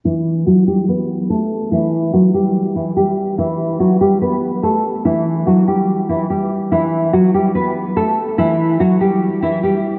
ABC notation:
X:1
M:4/4
L:1/8
Q:1/4=144
K:Em
V:1 name="Nylon-string guitar"
[E,E]2 [F,F] [G,G] [B,B]2 [A,A]2 | [E,E]2 [F,F] [G,G]2 [E,E] [G,G]2 | [E,E]2 [F,F] [G,G] [B,B]2 [A,A]2 | [E,E]2 [F,F] [G,G]2 [E,E] [G,G]2 |
[E,E]2 [F,F] [G,G] [B,B]2 [A,A]2 | [E,E]2 [F,F] [G,G]2 [E,E] [G,G]2 |]